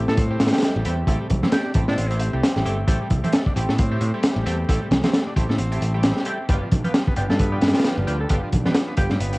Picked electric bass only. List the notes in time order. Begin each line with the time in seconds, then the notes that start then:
0.08 A2
0.41 A2
0.76 A1
0.86 E2
1.07 A1
1.31 C2
1.75 A1
1.88 A2
1.98 A1
2.33 C2
2.56 A1
2.66 G1
2.88 A1
3.11 C2
3.56 A1
3.69 A2
4.01 A2
4.36 A1
4.46 E2
4.69 A1
4.91 C2
5.37 A1
5.49 A2
5.59 A1
5.81 A1
6.49 G1
6.72 B1
7.17 G1
7.30 G2
7.62 G2
7.97 G1
8.07 D2
8.30 G1
8.53 B1
8.97 G1
9.11 G2
9.20 G1